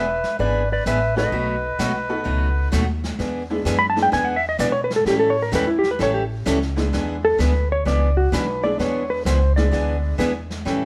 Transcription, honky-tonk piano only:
1.16 1.31 A3 medium
1.16 1.31 B3 medium
1.16 1.31 D#4 medium
1.16 1.31 F#4 medium
1.16 1.31 A4 medium
2.09 2.69 A3 medium
2.09 2.69 B3 medium
2.09 2.69 D#4 medium
2.09 2.69 F#4 medium
2.09 2.69 A4 medium
3.50 3.94 G#3 medium
3.50 3.94 B3 medium
3.50 3.94 D4 medium
3.50 3.94 E4 medium
3.50 3.94 G#4 medium
3.96 4.10 G#3 medium
3.96 4.11 B3 medium
3.96 4.11 D4 medium
3.96 4.11 E4 medium
3.96 4.11 G#4 medium
6.76 7.36 G#3 medium
6.76 7.36 B3 medium
6.76 7.36 D4 medium
6.76 7.36 E4 medium
6.76 7.36 G#4 medium
8.63 9.23 G#3 medium
8.63 9.23 B3 medium
8.63 9.23 D4 medium
8.63 9.23 E4 medium
8.63 9.23 G#4 medium
9.57 10.16 G#3 medium
9.57 10.17 B3 medium
9.57 10.16 D4 medium
9.57 10.17 E4 medium
9.57 10.17 G#4 medium

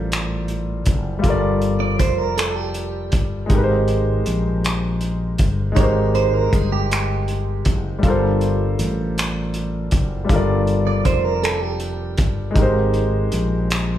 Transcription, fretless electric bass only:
0.00 0.83 A1 medium
0.87 1.21 F#1 medium
1.24 2.00 G1 medium
2.00 3.14 F1 medium
3.14 3.47 G1 medium
3.50 4.22 G#1 medium
4.27 5.36 A#1 medium
5.40 5.73 G1 medium
5.77 6.48 G#1 medium
6.53 7.62 G1 medium
7.67 8.00 F#1 medium
8.04 8.75 G1 medium
8.79 9.88 A1 medium
9.93 10.26 F#1 medium
10.30 11.06 G1 medium
11.06 12.19 F1 medium
12.19 12.53 G1 medium
12.56 13.27 G#1 medium
13.33 13.98 A#1 medium

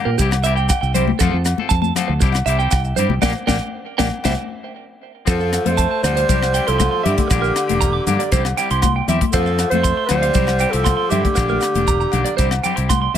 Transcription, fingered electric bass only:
0.06 0.16 A#2 medium
0.20 0.69 C2 loud
0.82 1.12 C2 medium
1.21 1.31 F2 medium
1.33 1.53 F2 medium
1.71 1.90 F2 medium
2.09 2.19 D2 medium
2.22 2.41 C2 loud
2.46 2.66 C2 medium
2.72 2.92 C2 medium
2.97 3.08 G2 medium
3.09 3.19 C2 medium
3.49 3.58 A#1 medium
4.00 4.09 A#1 medium
4.25 4.35 C2 loud
5.27 5.57 F2 medium
5.66 5.85 F2 medium
6.03 6.23 D2 medium
6.29 6.59 C2 medium
6.68 6.87 C2 medium
7.06 7.15 G2 medium
7.31 7.50 A#1 loud
7.70 7.99 E1 medium
8.07 8.16 G2 medium
8.32 8.52 C2 medium
8.71 9.00 C2 medium
9.08 9.18 E2 medium
9.34 9.63 F2 medium
9.72 9.91 F2 medium
10.10 10.30 D2 medium
10.35 10.65 C2 medium
10.74 10.93 C2 medium
11.12 11.22 G2 medium
11.37 11.57 A#1 medium
11.75 12.04 E1 medium
12.13 12.23 B1 medium
12.39 12.58 C2 medium
12.78 13.07 C2 medium
13.14 13.18 E2 medium

